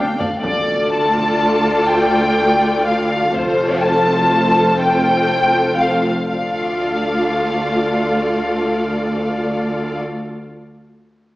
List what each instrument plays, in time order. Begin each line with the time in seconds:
Already playing: violin section G5
0.19 tuba D2, double bass section D2, violin section D5 F5, taiko low
0.43 cello section D2, double bass section D2, viola section A3 F4, violin section A4 D5, taiko, impact
0.92 violin section A5
1.19 taiko
1.91 violin section G5
2.87 violin section F5
3.35 double bass section F1, cello section F2, viola section A3 F4, violin section A4 C5, taiko
3.83 violin section A5
4.81 violin section G5
5.79 violin section F5
6.29 double bass section D2, cello section D2, viola section A3 F4, violin section A4 D5 F5, taiko